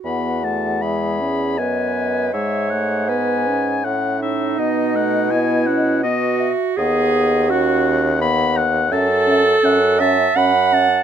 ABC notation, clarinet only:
X:1
M:3/4
L:1/8
Q:1/4=82
K:E
V:1 name="Clarinet"
F2 G2 B2 | c2 B2 z D- | D2 E2 F2 | G2 F2 z2 |
[K:F#dor] A3 e f2 |]